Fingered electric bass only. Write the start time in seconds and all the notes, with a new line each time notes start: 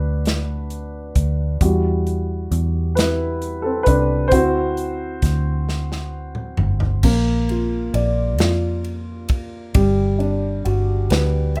Already playing: D2
1.16 D2
1.61 E2
2.51 E2
3.87 C2
4.32 D2
5.23 D2
6.58 G1
7.03 A#1
7.94 A#1
8.39 F2
9.75 G1
10.66 G1
11.11 D2